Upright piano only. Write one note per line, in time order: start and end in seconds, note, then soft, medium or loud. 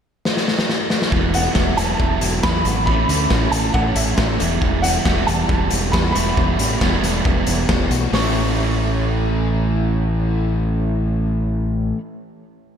1.35 1.79 F#5 medium
1.77 2.18 A5 medium
2.43 2.84 B5 loud
2.86 3.54 B5 medium
3.51 3.73 A5 medium
3.74 3.97 F#5 medium
3.96 4.37 E5 medium
4.82 5.28 F#5 medium
5.27 5.95 A5 medium
5.92 6.11 B5 medium
6.12 7.64 B5 medium
8.15 11.94 C#6 medium